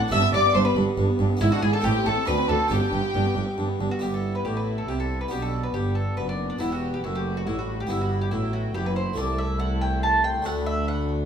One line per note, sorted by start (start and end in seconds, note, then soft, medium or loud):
0.00 0.10 A2 medium
0.00 0.11 D4 medium
0.00 0.11 F#5 loud
0.08 0.20 G1 loud
0.08 1.35 B3 medium
0.08 1.36 D4 medium
0.08 1.37 G4 medium
0.08 0.32 E5 loud
0.08 0.33 E6 loud
0.12 0.20 G2 medium
0.12 0.32 G2 medium
0.12 0.22 D4 medium
0.12 0.33 E5 loud
0.23 0.34 B3 medium
0.33 0.41 G1 medium
0.33 0.42 G2 medium
0.33 0.53 G2 medium
0.33 0.44 D4 medium
0.33 0.55 D5 medium
0.33 0.54 D5 loud
0.33 0.54 D6 loud
0.44 0.55 B3 medium
0.54 0.63 G1 medium
0.54 0.63 G2 medium
0.54 0.74 G2 medium
0.54 0.65 D4 medium
0.54 0.64 C5 medium
0.54 0.66 C5 loud
0.54 0.65 C6 loud
0.65 0.77 B3 medium
0.65 0.75 B4 medium
0.65 0.77 B4 medium
0.65 0.77 B5 medium
0.76 0.84 G1 medium
0.76 0.96 G2 medium
0.76 0.85 G2 medium
0.76 0.88 D4 medium
0.88 0.98 B3 medium
0.98 1.06 G1 medium
0.98 1.17 G2 medium
0.98 1.06 G2 medium
0.98 1.08 D4 medium
1.09 1.20 B3 medium
1.19 1.28 G1 medium
1.19 1.39 G2 medium
1.19 1.28 G2 medium
1.19 1.31 D4 medium
1.31 1.41 B3 medium
1.37 1.81 B3 medium
1.37 1.82 D4 medium
1.37 1.82 E4 medium
1.41 1.49 G#1 medium
1.41 1.61 G#2 medium
1.41 1.50 G#2 medium
1.41 1.51 E4 medium
1.41 1.51 E4 loud
1.41 1.52 E4 medium
1.41 1.45 E5 loud
1.52 1.63 D4 medium
1.52 1.62 F#4 medium
1.52 1.57 F#4 medium
1.52 1.63 F#5 medium
1.62 1.71 G#1 medium
1.62 1.82 G#2 medium
1.62 1.71 G#2 medium
1.62 1.74 E4 medium
1.62 1.73 G#4 medium
1.62 1.73 G#5 loud
1.73 1.84 D4 medium
1.73 1.83 A4 medium
1.73 1.84 A4 medium
1.73 1.84 A5 loud
1.80 2.24 A3 medium
1.80 2.24 C4 medium
1.80 2.25 E4 medium
1.80 2.04 G4 medium
1.80 2.05 G5 loud
1.84 1.92 A1 medium
1.84 2.04 A2 medium
1.84 1.93 A2 medium
1.84 1.94 A3 medium
1.84 2.06 G4 loud
1.95 2.06 C4 medium
2.05 2.14 A1 medium
2.05 2.25 A2 medium
2.05 2.15 A2 medium
2.05 2.16 A3 medium
2.05 2.26 A4 medium
2.05 2.28 A4 medium
2.05 2.27 A5 loud
2.16 2.27 C4 medium
2.25 2.35 D2 medium
2.25 2.47 D2 medium
2.25 2.36 D2 medium
2.25 2.69 C4 medium
2.25 2.69 D4 medium
2.25 2.37 D4 medium
2.25 2.48 B4 loud
2.25 2.49 B4 loud
2.25 2.49 B5 loud
2.38 2.49 C4 medium
2.49 2.57 D2 medium
2.49 2.69 D2 medium
2.49 2.58 D2 medium
2.49 2.60 D4 medium
2.49 2.69 A4 medium
2.49 2.71 A4 medium
2.49 2.71 A5 loud
2.60 2.71 C4 medium
2.68 2.79 G1 medium
2.68 2.91 G2 medium
2.68 2.80 G2 medium
2.68 3.97 B3 medium
2.68 3.98 D4 medium
2.68 2.81 D4 medium
2.68 3.76 G4 medium
2.68 3.81 G4 medium
2.68 3.80 G5 loud
2.82 2.93 B3 medium
2.93 3.01 G1 medium
2.93 3.13 G2 medium
2.93 3.01 G2 medium
2.93 3.04 D4 medium
3.04 3.15 B3 medium
3.15 3.23 G1 medium
3.15 3.34 G2 medium
3.15 3.23 G2 medium
3.15 3.25 D4 medium
3.26 3.37 B3 medium
3.36 3.45 G1 medium
3.36 3.56 G2 medium
3.36 3.45 G2 medium
3.36 3.47 D4 medium
3.47 3.58 B3 medium
3.58 3.67 G1 medium
3.58 3.78 G2 medium
3.58 3.66 G2 medium
3.58 3.68 D4 medium
3.69 3.80 B3 medium
3.80 3.89 G1 medium
3.80 3.88 G2 medium
3.80 4.00 G2 medium
3.80 3.91 D4 medium
3.91 4.01 B3 medium
3.91 4.01 F#4 medium
3.99 4.43 G1 medium
3.99 4.42 G2 soft
3.99 5.26 B3 soft
3.99 4.42 B3 soft
3.99 5.27 D4 soft
3.99 5.28 E4 soft
3.99 4.12 G4 medium
3.99 4.42 E5 medium
4.14 4.34 A4 medium
4.35 4.45 B4 medium
4.45 4.88 A1 soft
4.45 4.88 A2 soft
4.45 4.85 A2 soft
4.45 4.88 A3 soft
4.45 4.55 G4 medium
4.45 4.88 D5 soft
4.57 4.77 B4 medium
4.78 4.88 A4 medium
4.88 5.30 C2 soft
4.88 5.31 C3 soft
4.88 5.27 C3 soft
4.88 5.30 G3 soft
4.88 4.98 G4 medium
4.88 5.31 E5 soft
5.00 5.19 A4 medium
5.21 5.31 B4 medium
5.29 5.73 B1 medium
5.29 5.71 B2 soft
5.29 5.74 B2 soft
5.29 5.73 G3 soft
5.29 6.55 B3 soft
5.29 6.56 D4 soft
5.29 5.74 D4 soft
5.29 5.41 G4 medium
5.29 5.73 D5 soft
5.42 5.62 A4 medium
5.63 5.74 B4 medium
5.74 6.17 G1 soft
5.74 6.14 G2 soft
5.74 6.17 G2 soft
5.74 7.01 B3 soft
5.74 6.59 D4 soft
5.74 5.94 G4 medium
5.74 7.90 B4 medium
5.95 6.16 A4 medium
6.17 6.60 F#1 soft
6.17 6.57 F#2 soft
6.17 6.60 F#2 soft
6.17 6.27 B4 medium
6.29 6.49 D5 medium
6.50 6.59 D4 medium
6.59 7.03 E1 medium
6.59 7.03 E2 soft
6.59 7.00 E2 soft
6.59 7.01 B3 soft
6.59 6.70 E4 medium
6.59 7.86 E4 soft
6.59 7.04 G4 soft
6.72 6.92 F#4 medium
6.94 7.03 G4 medium
7.03 7.46 F#1 medium
7.03 7.46 F#2 medium
7.03 7.43 F#2 soft
7.03 7.46 A3 soft
7.03 7.14 E4 medium
7.03 7.90 F#4 soft
7.15 7.35 G4 medium
7.37 7.46 F#4 medium
7.47 7.90 A1 medium
7.47 7.90 A2 soft
7.47 7.86 A2 soft
7.47 7.89 G3 soft
7.47 7.57 E4 medium
7.59 7.78 F#4 medium
7.80 7.90 G4 medium
7.87 8.32 G1 medium
7.87 8.29 G2 soft
7.87 8.32 G2 medium
7.87 8.32 G3 soft
7.87 9.13 B3 soft
7.87 9.13 E4 soft
7.87 8.74 E4 soft
7.87 8.00 E4 medium
7.87 8.32 B5 medium
8.01 8.21 F#4 medium
8.21 8.31 G4 medium
8.31 8.75 A1 medium
8.31 8.76 A2 medium
8.31 8.72 A2 soft
8.31 8.75 F#3 soft
8.31 8.52 E4 medium
8.31 8.75 G5 medium
8.53 8.73 F#4 medium
8.74 9.17 F#1 medium
8.74 9.14 F#2 soft
8.74 9.17 F#2 medium
8.74 9.18 E3 medium
8.74 9.17 E4 medium
8.74 8.85 G4 medium
8.74 9.18 B5 medium
8.86 8.96 B4 medium
8.96 9.16 C5 medium
9.14 10.40 A3 soft
9.14 10.41 E4 soft
9.14 10.42 A4 soft
9.14 9.38 D5 medium
9.18 10.42 C2 medium
9.18 10.42 C2 soft
9.18 10.43 C2 medium
9.18 11.25 A3 medium
9.18 10.42 E4 medium
9.18 9.59 A5 medium
9.38 9.59 E5 medium
9.60 9.80 F#5 medium
9.60 10.02 A5 medium
9.81 10.02 G5 medium
10.03 10.23 A5 medium
10.03 10.45 C6 medium
10.24 10.44 G5 medium
10.42 11.25 D2 medium
10.42 11.25 A3 soft
10.42 11.25 D4 soft
10.42 11.25 A4 soft
10.42 10.66 F#5 medium
10.42 11.25 B5 medium
10.46 11.25 D2 soft
10.46 11.25 D2 medium
10.46 11.25 D4 medium
10.66 10.87 E5 medium
10.88 11.25 F#5 medium